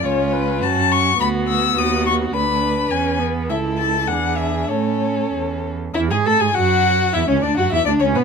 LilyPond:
<<
  \new Staff \with { instrumentName = "Violin" } { \time 2/4 \key a \major \tempo 4 = 103 cis''8 b'8 a''8 cis'''8 | b''8 e'''8 dis'''8 cis'''8 | b''4 gis''8 r8 | e''8 a''8 fis''8 e''8 |
cis''4. r8 | e''16 gis''16 a''16 gis''16 fis''4 | e''16 cis''16 d''16 fis''16 e''16 d''16 cis''16 b'16 | }
  \new Staff \with { instrumentName = "Violin" } { \time 2/4 \key a \major eis'4 fis'4 | fis'4 fis'4 | b'2 | a'4 gis'4 |
a'4. r8 | e'16 gis'16 a'16 gis'16 fis'4 | e'16 cis'16 d'16 fis'16 e'16 d'16 cis'16 b16 | }
  \new Staff \with { instrumentName = "Viola" } { \time 2/4 \key a \major cis'4 cis'4 | b2 | d'4 cis'8 b8 | e'4 d'4 |
cis'4. r8 | e'16 gis'16 a'16 gis'16 fis'4 | e'16 cis'16 d'16 fis'16 e'16 d'16 cis'16 b16 | }
  \new Staff \with { instrumentName = "Cello" } { \clef bass \time 2/4 \key a \major cis,4 fis,4 | d,4 dis,4 | d,4 e,4 | cis,4 e,4 |
a,4 e,4 | e,16 gis,16 a,16 gis,16 fis,4 | e,16 cis,16 d,16 fis,16 e,16 d,16 cis,16 b,16 | }
>>